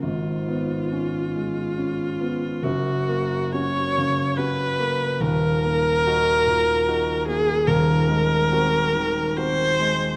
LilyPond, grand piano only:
\new Staff \with { instrumentName = "Grand piano" } { \time 3/4 \key fis \major \tempo 4 = 71 <gis,, gis,>8 b8 cis'8 gis8 cis'8 b8 | <fis,, fis,>8 ais8 <cis' fis'>8 cis8 <cis' fis'>8 ais8 | <dis,, dis,>8 ais8 <dis' fis'>8 ais,8 <dis' fis'>8 ais8 | <dis,, dis,>8 gis8 <bis fis'>8 dis8 <bis fis'>8 gis8 | }